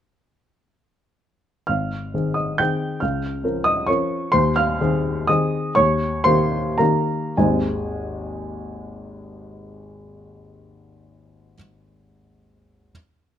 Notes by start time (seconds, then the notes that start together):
1.67 G#1 F5 F6
2.14 D#3 C4 G#4
2.34 D#5 D#6
2.58 D#3 C4 G#4 G5 G6
3.00 C#2 F5 F6
3.44 F3 C#4 A#4
3.64 D#5 D#6
3.87 F3 C#4 A#4 C#5 C#6
4.32 D#2 C5 C6
4.56 F5 F6
4.81 D#3 C4 G#4
5.27 D#3 C4 G#4 D#5 D#6
5.75 D#2 C#5 C#6
6.24 D#3 A#3 G4 C5 C6
6.78 D#3 A#3 G4 A#4 A#5
7.37 G#1 D#2 G#3 C4 D#4 G#4 G#5